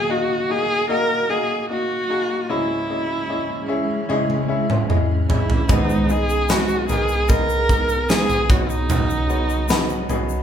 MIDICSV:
0, 0, Header, 1, 6, 480
1, 0, Start_track
1, 0, Key_signature, 5, "minor"
1, 0, Tempo, 800000
1, 1499, Time_signature, 4, 2, 24, 8
1, 6257, End_track
2, 0, Start_track
2, 0, Title_t, "Viola"
2, 0, Program_c, 0, 41
2, 0, Note_on_c, 0, 68, 112
2, 64, Note_on_c, 0, 66, 98
2, 73, Note_off_c, 0, 68, 0
2, 305, Note_on_c, 0, 68, 116
2, 314, Note_off_c, 0, 66, 0
2, 542, Note_off_c, 0, 68, 0
2, 546, Note_on_c, 0, 70, 127
2, 781, Note_on_c, 0, 68, 109
2, 790, Note_off_c, 0, 70, 0
2, 1017, Note_off_c, 0, 68, 0
2, 1021, Note_on_c, 0, 66, 109
2, 1502, Note_on_c, 0, 64, 97
2, 1511, Note_off_c, 0, 66, 0
2, 2461, Note_off_c, 0, 64, 0
2, 3181, Note_on_c, 0, 64, 87
2, 3422, Note_on_c, 0, 63, 93
2, 3431, Note_off_c, 0, 64, 0
2, 3660, Note_on_c, 0, 68, 109
2, 3669, Note_off_c, 0, 63, 0
2, 3897, Note_on_c, 0, 66, 108
2, 3906, Note_off_c, 0, 68, 0
2, 4130, Note_off_c, 0, 66, 0
2, 4133, Note_on_c, 0, 68, 110
2, 4373, Note_on_c, 0, 70, 119
2, 4382, Note_off_c, 0, 68, 0
2, 4854, Note_on_c, 0, 68, 117
2, 4863, Note_off_c, 0, 70, 0
2, 5098, Note_on_c, 0, 66, 100
2, 5107, Note_off_c, 0, 68, 0
2, 5217, Note_on_c, 0, 63, 97
2, 5226, Note_off_c, 0, 66, 0
2, 6178, Note_off_c, 0, 63, 0
2, 6257, End_track
3, 0, Start_track
3, 0, Title_t, "Grand piano"
3, 0, Program_c, 1, 0
3, 0, Control_c, 1, 64, 127
3, 0, Note_on_c, 1, 39, 70
3, 0, Note_on_c, 1, 46, 64
3, 0, Note_on_c, 1, 58, 75
3, 0, Note_on_c, 1, 63, 69
3, 0, Note_on_c, 1, 66, 71
3, 0, Note_on_c, 1, 68, 88
3, 0, Note_on_c, 1, 75, 106
3, 55, Note_off_c, 1, 58, 0
3, 55, Note_on_c, 1, 58, 85
3, 56, Note_off_c, 1, 63, 0
3, 56, Note_on_c, 1, 63, 78
3, 61, Note_off_c, 1, 66, 0
3, 61, Note_off_c, 1, 75, 0
3, 61, Note_on_c, 1, 66, 74
3, 61, Note_on_c, 1, 75, 90
3, 285, Note_off_c, 1, 58, 0
3, 285, Note_off_c, 1, 63, 0
3, 288, Note_off_c, 1, 66, 0
3, 288, Note_off_c, 1, 75, 0
3, 294, Note_on_c, 1, 58, 80
3, 296, Note_on_c, 1, 63, 84
3, 300, Note_on_c, 1, 66, 70
3, 303, Note_on_c, 1, 75, 97
3, 524, Note_off_c, 1, 58, 0
3, 525, Note_off_c, 1, 63, 0
3, 527, Note_off_c, 1, 66, 0
3, 529, Note_off_c, 1, 75, 0
3, 533, Note_on_c, 1, 58, 102
3, 534, Note_on_c, 1, 63, 86
3, 537, Note_on_c, 1, 66, 94
3, 540, Note_on_c, 1, 75, 121
3, 764, Note_off_c, 1, 58, 0
3, 765, Note_off_c, 1, 63, 0
3, 766, Note_off_c, 1, 66, 0
3, 768, Note_off_c, 1, 75, 0
3, 773, Note_on_c, 1, 58, 79
3, 774, Note_on_c, 1, 63, 77
3, 778, Note_on_c, 1, 66, 71
3, 778, Note_on_c, 1, 75, 93
3, 1004, Note_off_c, 1, 58, 0
3, 1004, Note_off_c, 1, 63, 0
3, 1006, Note_off_c, 1, 66, 0
3, 1007, Note_off_c, 1, 75, 0
3, 1018, Note_on_c, 1, 58, 75
3, 1022, Note_on_c, 1, 63, 75
3, 1024, Note_on_c, 1, 66, 68
3, 1027, Note_on_c, 1, 75, 79
3, 1246, Note_off_c, 1, 58, 0
3, 1248, Note_off_c, 1, 63, 0
3, 1250, Note_off_c, 1, 66, 0
3, 1251, Note_off_c, 1, 75, 0
3, 1256, Note_on_c, 1, 58, 80
3, 1259, Note_on_c, 1, 63, 71
3, 1261, Note_on_c, 1, 66, 70
3, 1263, Note_off_c, 1, 68, 0
3, 1263, Note_on_c, 1, 68, 92
3, 1475, Note_off_c, 1, 39, 0
3, 1475, Note_off_c, 1, 46, 0
3, 1485, Note_off_c, 1, 58, 0
3, 1487, Note_off_c, 1, 63, 0
3, 1488, Note_off_c, 1, 66, 0
3, 1489, Note_off_c, 1, 68, 0
3, 1497, Note_on_c, 1, 61, 99
3, 1498, Note_on_c, 1, 37, 66
3, 1499, Note_on_c, 1, 44, 73
3, 1499, Note_on_c, 1, 64, 97
3, 1501, Note_on_c, 1, 68, 87
3, 1502, Note_on_c, 1, 75, 106
3, 1507, Control_c, 1, 64, 0
3, 1602, Control_c, 1, 64, 127
3, 1726, Note_off_c, 1, 61, 0
3, 1727, Note_off_c, 1, 64, 0
3, 1728, Note_off_c, 1, 68, 0
3, 1729, Note_off_c, 1, 75, 0
3, 1736, Note_on_c, 1, 61, 75
3, 1738, Note_on_c, 1, 64, 68
3, 1741, Note_on_c, 1, 68, 76
3, 1742, Note_on_c, 1, 75, 84
3, 1966, Note_off_c, 1, 61, 0
3, 1967, Note_off_c, 1, 64, 0
3, 1968, Note_off_c, 1, 68, 0
3, 1968, Note_off_c, 1, 75, 0
3, 1976, Note_on_c, 1, 61, 85
3, 1977, Note_on_c, 1, 64, 73
3, 1979, Note_on_c, 1, 68, 74
3, 1980, Note_on_c, 1, 75, 93
3, 2200, Note_off_c, 1, 61, 0
3, 2204, Note_off_c, 1, 64, 0
3, 2206, Note_off_c, 1, 68, 0
3, 2208, Note_off_c, 1, 75, 0
3, 2209, Note_on_c, 1, 61, 104
3, 2213, Note_on_c, 1, 64, 84
3, 2215, Note_on_c, 1, 68, 90
3, 2216, Note_on_c, 1, 76, 114
3, 2442, Note_off_c, 1, 61, 0
3, 2444, Note_off_c, 1, 64, 0
3, 2445, Note_off_c, 1, 68, 0
3, 2446, Note_off_c, 1, 76, 0
3, 2453, Note_on_c, 1, 61, 115
3, 2454, Note_on_c, 1, 64, 101
3, 2457, Note_on_c, 1, 68, 108
3, 2460, Note_on_c, 1, 75, 124
3, 2681, Note_off_c, 1, 61, 0
3, 2684, Note_off_c, 1, 64, 0
3, 2685, Note_off_c, 1, 68, 0
3, 2688, Note_off_c, 1, 75, 0
3, 2690, Note_on_c, 1, 61, 99
3, 2694, Note_on_c, 1, 64, 86
3, 2694, Note_on_c, 1, 68, 86
3, 2697, Note_on_c, 1, 76, 102
3, 2921, Note_off_c, 1, 61, 0
3, 2923, Note_off_c, 1, 64, 0
3, 2925, Note_off_c, 1, 68, 0
3, 2926, Note_off_c, 1, 76, 0
3, 2930, Note_on_c, 1, 61, 81
3, 2932, Note_on_c, 1, 64, 76
3, 2937, Note_on_c, 1, 68, 87
3, 2938, Note_on_c, 1, 75, 98
3, 3163, Note_off_c, 1, 61, 0
3, 3164, Note_off_c, 1, 64, 0
3, 3166, Note_off_c, 1, 68, 0
3, 3166, Note_off_c, 1, 75, 0
3, 3173, Note_on_c, 1, 61, 73
3, 3175, Note_on_c, 1, 64, 71
3, 3176, Note_on_c, 1, 68, 61
3, 3179, Note_on_c, 1, 75, 84
3, 3395, Note_off_c, 1, 37, 0
3, 3395, Note_off_c, 1, 44, 0
3, 3404, Note_off_c, 1, 61, 0
3, 3405, Note_off_c, 1, 64, 0
3, 3405, Note_off_c, 1, 68, 0
3, 3407, Note_off_c, 1, 75, 0
3, 3411, Note_on_c, 1, 59, 95
3, 3413, Note_on_c, 1, 44, 65
3, 3413, Note_on_c, 1, 51, 69
3, 3413, Note_on_c, 1, 63, 90
3, 3415, Note_on_c, 1, 68, 97
3, 3417, Note_on_c, 1, 75, 116
3, 3428, Control_c, 1, 64, 0
3, 3520, Control_c, 1, 64, 127
3, 3643, Note_off_c, 1, 59, 0
3, 3644, Note_off_c, 1, 63, 0
3, 3645, Note_off_c, 1, 68, 0
3, 3646, Note_off_c, 1, 75, 0
3, 3652, Note_on_c, 1, 59, 67
3, 3654, Note_on_c, 1, 63, 68
3, 3656, Note_on_c, 1, 68, 61
3, 3657, Note_on_c, 1, 75, 85
3, 3883, Note_off_c, 1, 59, 0
3, 3885, Note_off_c, 1, 63, 0
3, 3885, Note_off_c, 1, 68, 0
3, 3886, Note_off_c, 1, 75, 0
3, 3892, Note_on_c, 1, 59, 80
3, 3895, Note_on_c, 1, 63, 73
3, 3896, Note_on_c, 1, 68, 81
3, 3898, Note_on_c, 1, 71, 92
3, 4124, Note_off_c, 1, 59, 0
3, 4125, Note_off_c, 1, 63, 0
3, 4126, Note_off_c, 1, 68, 0
3, 4127, Note_off_c, 1, 71, 0
3, 4134, Note_on_c, 1, 59, 77
3, 4137, Note_on_c, 1, 63, 76
3, 4138, Note_on_c, 1, 68, 74
3, 4141, Note_on_c, 1, 70, 95
3, 4365, Note_off_c, 1, 59, 0
3, 4366, Note_off_c, 1, 63, 0
3, 4367, Note_off_c, 1, 68, 0
3, 4368, Note_off_c, 1, 70, 0
3, 4375, Note_on_c, 1, 59, 97
3, 4378, Note_on_c, 1, 63, 96
3, 4379, Note_on_c, 1, 68, 91
3, 4383, Note_on_c, 1, 75, 107
3, 4605, Note_off_c, 1, 59, 0
3, 4607, Note_off_c, 1, 63, 0
3, 4607, Note_off_c, 1, 68, 0
3, 4609, Note_off_c, 1, 75, 0
3, 4614, Note_on_c, 1, 59, 80
3, 4616, Note_on_c, 1, 63, 78
3, 4620, Note_on_c, 1, 68, 71
3, 4620, Note_on_c, 1, 75, 91
3, 4845, Note_off_c, 1, 59, 0
3, 4845, Note_off_c, 1, 63, 0
3, 4847, Note_off_c, 1, 68, 0
3, 4848, Note_off_c, 1, 75, 0
3, 4855, Note_on_c, 1, 59, 79
3, 4859, Note_on_c, 1, 63, 73
3, 4860, Note_on_c, 1, 68, 74
3, 4862, Note_on_c, 1, 75, 87
3, 5072, Note_off_c, 1, 44, 0
3, 5072, Note_off_c, 1, 51, 0
3, 5085, Note_off_c, 1, 59, 0
3, 5087, Note_off_c, 1, 63, 0
3, 5088, Note_off_c, 1, 68, 0
3, 5089, Note_off_c, 1, 75, 0
3, 5098, Note_on_c, 1, 59, 77
3, 5101, Note_on_c, 1, 47, 66
3, 5101, Note_on_c, 1, 63, 73
3, 5102, Note_on_c, 1, 54, 65
3, 5102, Note_on_c, 1, 66, 70
3, 5106, Note_on_c, 1, 73, 82
3, 5107, Control_c, 1, 64, 0
3, 5221, Control_c, 1, 64, 127
3, 5555, Note_off_c, 1, 59, 0
3, 5556, Note_off_c, 1, 63, 0
3, 5557, Note_off_c, 1, 66, 0
3, 5558, Note_off_c, 1, 73, 0
3, 5574, Note_on_c, 1, 59, 80
3, 5578, Note_on_c, 1, 63, 73
3, 5581, Note_on_c, 1, 66, 65
3, 5582, Note_on_c, 1, 73, 78
3, 5805, Note_off_c, 1, 59, 0
3, 5806, Note_off_c, 1, 63, 0
3, 5808, Note_off_c, 1, 66, 0
3, 5809, Note_off_c, 1, 73, 0
3, 5814, Note_on_c, 1, 59, 94
3, 5815, Note_on_c, 1, 63, 91
3, 5818, Note_on_c, 1, 66, 91
3, 5820, Note_on_c, 1, 71, 112
3, 6045, Note_off_c, 1, 59, 0
3, 6045, Note_off_c, 1, 63, 0
3, 6046, Note_off_c, 1, 66, 0
3, 6048, Note_off_c, 1, 71, 0
3, 6056, Note_on_c, 1, 59, 91
3, 6058, Note_on_c, 1, 63, 87
3, 6060, Note_on_c, 1, 66, 88
3, 6062, Note_on_c, 1, 68, 104
3, 6257, Note_off_c, 1, 47, 0
3, 6257, Note_off_c, 1, 54, 0
3, 6257, Note_off_c, 1, 59, 0
3, 6257, Note_off_c, 1, 63, 0
3, 6257, Note_off_c, 1, 66, 0
3, 6257, Note_off_c, 1, 68, 0
3, 6257, End_track
4, 0, Start_track
4, 0, Title_t, "Steel-string acoustic guitar"
4, 0, Program_c, 2, 25
4, 3415, Note_on_c, 2, 44, 82
4, 3418, Note_on_c, 2, 51, 99
4, 3419, Note_on_c, 2, 56, 93
4, 3421, Note_on_c, 2, 59, 96
4, 3421, Note_on_c, 2, 63, 92
4, 3423, Note_on_c, 2, 68, 96
4, 3647, Note_off_c, 2, 68, 0
4, 3653, Note_off_c, 2, 63, 0
4, 3655, Note_on_c, 2, 68, 56
4, 3657, Note_off_c, 2, 44, 0
4, 3657, Note_off_c, 2, 59, 0
4, 3659, Note_off_c, 2, 51, 0
4, 3659, Note_off_c, 2, 56, 0
4, 3660, Note_on_c, 2, 63, 57
4, 3664, Note_on_c, 2, 59, 54
4, 3668, Note_on_c, 2, 56, 51
4, 3887, Note_off_c, 2, 56, 0
4, 3891, Note_off_c, 2, 59, 0
4, 3894, Note_on_c, 2, 56, 71
4, 3895, Note_off_c, 2, 63, 0
4, 3897, Note_off_c, 2, 68, 0
4, 3898, Note_on_c, 2, 59, 63
4, 3903, Note_on_c, 2, 63, 65
4, 3906, Note_on_c, 2, 68, 63
4, 4609, Note_off_c, 2, 68, 0
4, 4616, Note_on_c, 2, 68, 59
4, 4617, Note_off_c, 2, 56, 0
4, 4618, Note_off_c, 2, 63, 0
4, 4620, Note_on_c, 2, 63, 53
4, 4622, Note_off_c, 2, 59, 0
4, 4624, Note_on_c, 2, 59, 51
4, 4628, Note_on_c, 2, 56, 47
4, 4847, Note_off_c, 2, 56, 0
4, 4851, Note_off_c, 2, 59, 0
4, 4854, Note_on_c, 2, 56, 68
4, 4856, Note_off_c, 2, 63, 0
4, 4857, Note_off_c, 2, 68, 0
4, 4858, Note_on_c, 2, 59, 79
4, 4863, Note_on_c, 2, 63, 81
4, 4866, Note_on_c, 2, 68, 88
4, 5093, Note_off_c, 2, 68, 0
4, 5095, Note_off_c, 2, 63, 0
4, 5095, Note_on_c, 2, 66, 54
4, 5096, Note_off_c, 2, 56, 0
4, 5098, Note_off_c, 2, 59, 0
4, 5103, Note_on_c, 2, 63, 57
4, 5107, Note_on_c, 2, 61, 42
4, 5334, Note_off_c, 2, 61, 0
4, 5337, Note_off_c, 2, 66, 0
4, 5338, Note_off_c, 2, 63, 0
4, 5338, Note_on_c, 2, 47, 98
4, 5340, Note_on_c, 2, 54, 96
4, 5342, Note_on_c, 2, 61, 99
4, 5345, Note_on_c, 2, 63, 100
4, 5347, Note_on_c, 2, 66, 100
4, 5569, Note_off_c, 2, 66, 0
4, 5576, Note_off_c, 2, 63, 0
4, 5576, Note_on_c, 2, 66, 60
4, 5578, Note_off_c, 2, 47, 0
4, 5580, Note_off_c, 2, 54, 0
4, 5580, Note_off_c, 2, 61, 0
4, 5583, Note_on_c, 2, 63, 60
4, 5588, Note_on_c, 2, 61, 50
4, 5813, Note_off_c, 2, 61, 0
4, 5816, Note_on_c, 2, 54, 74
4, 5817, Note_off_c, 2, 66, 0
4, 5818, Note_off_c, 2, 63, 0
4, 5820, Note_on_c, 2, 61, 76
4, 5825, Note_on_c, 2, 63, 71
4, 5828, Note_on_c, 2, 66, 80
4, 6257, Note_off_c, 2, 54, 0
4, 6257, Note_off_c, 2, 61, 0
4, 6257, Note_off_c, 2, 63, 0
4, 6257, Note_off_c, 2, 66, 0
4, 6257, End_track
5, 0, Start_track
5, 0, Title_t, "Ambient pad"
5, 0, Program_c, 3, 92
5, 0, Note_on_c, 3, 58, 80
5, 0, Note_on_c, 3, 66, 95
5, 1476, Note_off_c, 3, 66, 0
5, 1479, Note_off_c, 3, 58, 0
5, 1497, Note_on_c, 3, 68, 86
5, 1499, Note_on_c, 3, 61, 70
5, 1500, Note_on_c, 3, 52, 70
5, 1500, Note_on_c, 3, 56, 74
5, 3400, Note_off_c, 3, 56, 0
5, 3400, Note_off_c, 3, 61, 0
5, 3401, Note_off_c, 3, 52, 0
5, 3418, Note_on_c, 3, 59, 75
5, 5074, Note_off_c, 3, 68, 0
5, 5101, Note_on_c, 3, 49, 84
5, 5101, Note_on_c, 3, 61, 77
5, 5102, Note_on_c, 3, 54, 79
5, 5103, Note_on_c, 3, 66, 94
5, 6257, Note_off_c, 3, 49, 0
5, 6257, Note_off_c, 3, 54, 0
5, 6257, Note_off_c, 3, 59, 0
5, 6257, Note_off_c, 3, 61, 0
5, 6257, Note_off_c, 3, 66, 0
5, 6257, End_track
6, 0, Start_track
6, 0, Title_t, "Drums"
6, 2458, Note_on_c, 9, 48, 59
6, 2518, Note_off_c, 9, 48, 0
6, 2579, Note_on_c, 9, 48, 58
6, 2639, Note_off_c, 9, 48, 0
6, 2818, Note_on_c, 9, 47, 71
6, 2878, Note_off_c, 9, 47, 0
6, 2939, Note_on_c, 9, 45, 90
6, 2999, Note_off_c, 9, 45, 0
6, 3178, Note_on_c, 9, 43, 108
6, 3238, Note_off_c, 9, 43, 0
6, 3298, Note_on_c, 9, 43, 93
6, 3358, Note_off_c, 9, 43, 0
6, 3414, Note_on_c, 9, 82, 73
6, 3415, Note_on_c, 9, 43, 98
6, 3416, Note_on_c, 9, 36, 106
6, 3474, Note_off_c, 9, 82, 0
6, 3475, Note_off_c, 9, 43, 0
6, 3476, Note_off_c, 9, 36, 0
6, 3537, Note_on_c, 9, 82, 50
6, 3597, Note_off_c, 9, 82, 0
6, 3655, Note_on_c, 9, 82, 56
6, 3715, Note_off_c, 9, 82, 0
6, 3776, Note_on_c, 9, 82, 52
6, 3836, Note_off_c, 9, 82, 0
6, 3893, Note_on_c, 9, 82, 84
6, 3899, Note_on_c, 9, 38, 127
6, 3953, Note_off_c, 9, 82, 0
6, 3959, Note_off_c, 9, 38, 0
6, 4012, Note_on_c, 9, 82, 43
6, 4072, Note_off_c, 9, 82, 0
6, 4133, Note_on_c, 9, 82, 58
6, 4138, Note_on_c, 9, 43, 75
6, 4193, Note_off_c, 9, 82, 0
6, 4198, Note_off_c, 9, 43, 0
6, 4252, Note_on_c, 9, 82, 48
6, 4312, Note_off_c, 9, 82, 0
6, 4370, Note_on_c, 9, 82, 83
6, 4378, Note_on_c, 9, 36, 103
6, 4379, Note_on_c, 9, 43, 68
6, 4430, Note_off_c, 9, 82, 0
6, 4438, Note_off_c, 9, 36, 0
6, 4439, Note_off_c, 9, 43, 0
6, 4496, Note_on_c, 9, 82, 53
6, 4556, Note_off_c, 9, 82, 0
6, 4616, Note_on_c, 9, 36, 100
6, 4620, Note_on_c, 9, 82, 59
6, 4676, Note_off_c, 9, 36, 0
6, 4680, Note_off_c, 9, 82, 0
6, 4734, Note_on_c, 9, 82, 53
6, 4794, Note_off_c, 9, 82, 0
6, 4855, Note_on_c, 9, 82, 79
6, 4860, Note_on_c, 9, 38, 126
6, 4915, Note_off_c, 9, 82, 0
6, 4920, Note_off_c, 9, 38, 0
6, 4977, Note_on_c, 9, 43, 72
6, 4977, Note_on_c, 9, 82, 49
6, 5037, Note_off_c, 9, 43, 0
6, 5037, Note_off_c, 9, 82, 0
6, 5098, Note_on_c, 9, 36, 123
6, 5098, Note_on_c, 9, 82, 53
6, 5101, Note_on_c, 9, 43, 73
6, 5158, Note_off_c, 9, 36, 0
6, 5158, Note_off_c, 9, 82, 0
6, 5161, Note_off_c, 9, 43, 0
6, 5218, Note_on_c, 9, 82, 51
6, 5278, Note_off_c, 9, 82, 0
6, 5337, Note_on_c, 9, 82, 78
6, 5339, Note_on_c, 9, 43, 111
6, 5397, Note_off_c, 9, 82, 0
6, 5399, Note_off_c, 9, 43, 0
6, 5460, Note_on_c, 9, 82, 54
6, 5520, Note_off_c, 9, 82, 0
6, 5578, Note_on_c, 9, 82, 49
6, 5638, Note_off_c, 9, 82, 0
6, 5696, Note_on_c, 9, 82, 47
6, 5756, Note_off_c, 9, 82, 0
6, 5811, Note_on_c, 9, 82, 85
6, 5822, Note_on_c, 9, 38, 127
6, 5871, Note_off_c, 9, 82, 0
6, 5882, Note_off_c, 9, 38, 0
6, 5935, Note_on_c, 9, 82, 46
6, 5995, Note_off_c, 9, 82, 0
6, 6057, Note_on_c, 9, 43, 77
6, 6058, Note_on_c, 9, 82, 60
6, 6117, Note_off_c, 9, 43, 0
6, 6118, Note_off_c, 9, 82, 0
6, 6174, Note_on_c, 9, 82, 52
6, 6234, Note_off_c, 9, 82, 0
6, 6257, End_track
0, 0, End_of_file